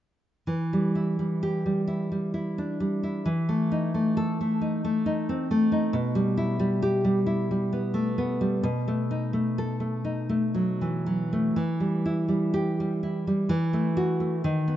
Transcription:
0.47 3.23 E3 soft
0.73 1.18 G3 soft
0.95 1.86 E4 soft
1.19 1.64 G3 soft
1.43 1.80 G4 medium
1.66 2.10 G3 soft
1.88 2.33 E4 soft
2.12 2.79 G3 soft
2.34 3.02 E4 soft
2.58 3.28 D4 soft
2.80 3.27 G3 soft
3.03 3.27 E4 soft
3.26 5.89 E3 medium
3.49 3.93 A3 soft
3.72 4.60 D#4 soft
3.94 4.39 A3 soft
4.17 4.53 A4 medium
4.41 4.83 A3 soft
4.61 5.05 D#4 soft
4.85 5.50 A3 soft
5.06 5.71 D#4 soft
5.29 5.95 C4 soft
5.51 5.95 A3 soft
5.72 5.94 D#4 soft
5.93 8.61 B2 medium
6.15 6.58 G3 medium
6.37 7.25 E4 medium
6.60 7.03 G3 medium
6.82 7.19 G4 medium
7.05 7.50 G3 medium
7.26 8.65 E4 medium
7.51 8.40 G3 soft
7.73 8.17 B3 soft
7.94 8.65 A3 soft
8.18 8.65 B3 soft
8.41 8.65 G3 soft
8.63 11.50 B2 medium
8.88 9.32 A3 soft
9.11 10.03 D#4 medium
9.33 9.79 A3 soft
9.58 9.96 A4 medium
9.80 10.28 A3 soft
10.05 11.55 D#4 soft
10.29 11.31 A3 soft
10.54 11.05 F#3 soft
10.81 11.55 E3 soft
11.06 11.56 F#3 soft
11.33 11.56 A3 soft
11.56 13.45 E3 medium
11.80 12.27 G3 soft
12.06 13.02 E4 soft
12.28 12.79 G3 soft
12.54 12.92 G4 medium
12.80 13.26 G3 soft
13.03 13.50 E4 soft
13.27 13.50 G3 soft
13.49 14.41 E3 medium
13.73 14.19 A3 soft
13.97 14.34 F#4 medium
14.20 14.44 A3 soft
14.44 14.77 D#3 medium
14.68 14.77 B3 soft

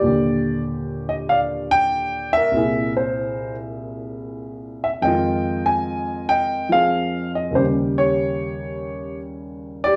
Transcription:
0.00 2.52 D#2 medium
0.00 2.52 A#2 soft
0.00 0.62 D5 medium
0.05 2.54 D3 soft
0.05 2.55 G4 medium
1.09 1.14 D#5 medium
1.29 2.51 D5 medium
1.29 1.39 F5 medium
1.71 2.30 G5 loud
2.33 2.92 E5 loud
2.37 3.56 A#4 medium
2.51 5.02 C2 soft
2.51 5.03 A#2 soft
2.51 5.04 E4 soft
2.57 5.05 G#4 soft
2.97 3.55 C5 medium
4.84 4.89 E5 medium
5.02 7.52 F2 medium
5.02 7.51 D#3 medium
5.02 7.54 G#3 soft
5.02 6.25 D#5 medium
5.02 5.67 G5 medium
5.07 7.55 F4 medium
5.66 6.24 G#5 medium
6.29 7.34 D#5 medium
6.29 6.68 G5 loud
6.69 7.52 F3 soft
6.69 7.53 C4 soft
6.69 7.54 G#4 medium
6.69 7.30 F5 medium
7.35 7.54 D#5 medium
7.51 9.96 D#2 soft
7.51 9.96 D#3 soft
7.51 9.96 G3 soft
7.55 9.96 C#3 medium
7.55 7.97 G4 medium
7.55 7.64 C5 medium
7.98 9.18 G4 soft
7.98 9.17 C#5 medium
9.84 9.96 G4 medium
9.84 9.96 D5 loud

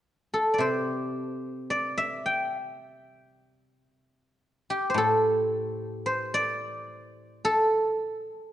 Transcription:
0.34 2.53 A4 soft
0.54 1.70 D5 soft
0.58 3.86 C3 soft
0.58 2.59 C5 medium
1.70 3.55 D5 medium
1.98 2.60 E5 medium
2.26 2.60 G5 medium
2.60 3.81 E5 medium
4.70 7.06 G4 medium
4.90 6.05 C5 soft
4.94 8.25 A2 medium
4.94 7.17 A4 medium
6.06 8.04 C5 medium
6.34 8.19 D5 medium
7.45 8.53 A4 medium

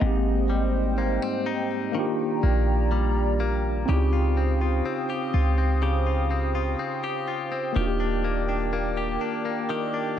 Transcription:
0.00 1.18 G#1 loud
0.00 2.05 G#2 medium
0.00 0.11 G#3 medium
0.00 1.90 A#3 medium
0.00 1.91 C4 medium
0.00 1.46 D#4 medium
0.00 1.92 D#4 medium
0.00 1.09 G4 medium
0.00 1.93 C5 medium
0.00 0.46 D#5 medium
0.00 1.91 D#5 medium
0.00 3.85 G5 medium
0.06 1.94 G4 medium
0.50 2.91 G3 medium
0.98 1.22 A#3 medium
0.98 2.04 C5 medium
1.22 2.05 C4 medium
1.46 3.92 D#4 medium
1.92 3.88 D#3 medium
1.92 3.83 A#3 medium
1.92 3.84 D4 medium
1.92 3.86 D5 medium
1.92 3.86 A#5 medium
1.97 3.86 F4 medium
1.97 3.87 G4 medium
2.43 3.84 A#1 loud
2.43 3.39 A#3 medium
2.92 4.16 G3 medium
3.40 3.98 A#3 medium
3.85 4.81 C#2 loud
3.85 5.81 C#3 medium
3.85 7.70 C4 medium
3.85 7.71 D#4 medium
3.85 7.72 C5 medium
3.85 7.72 F5 medium
3.85 5.80 G5 medium
3.85 7.72 D#6 medium
3.89 3.96 E4 medium
3.89 5.09 G4 medium
3.93 7.76 F4 medium
3.93 7.74 G4 medium
4.13 4.60 F4 medium
4.37 4.84 C4 medium
4.61 5.33 F4 medium
4.85 5.57 C4 medium
5.10 5.82 G4 medium
5.34 6.75 C#2 loud
5.34 6.05 F4 medium
5.58 6.29 C4 medium
5.82 7.85 C#3 medium
5.82 7.03 G4 medium
5.82 7.74 G5 medium
6.07 6.54 F4 medium
6.31 6.78 C4 medium
6.55 7.27 F4 medium
6.79 7.50 C4 medium
7.04 7.76 G4 medium
7.28 7.86 F4 medium
7.52 7.85 C4 medium
7.72 9.17 D#1 loud
7.72 9.69 D#3 medium
7.72 10.19 A#3 medium
7.72 10.19 D4 medium
7.72 8.97 G4 medium
7.72 10.19 A#4 medium
7.72 10.19 D5 medium
7.72 10.19 G5 medium
7.72 10.19 D6 medium
7.78 10.19 F4 medium
7.78 7.85 F#4 medium
7.87 10.19 G4 medium
8.00 8.48 D4 medium
8.24 8.72 A#3 medium
8.49 9.21 D4 medium
8.73 9.45 A#3 medium
8.97 9.70 G4 medium
9.21 9.93 D4 medium
9.45 10.17 A#3 medium
9.69 10.19 D#3 medium
9.69 10.19 G4 medium
9.94 10.19 D4 medium

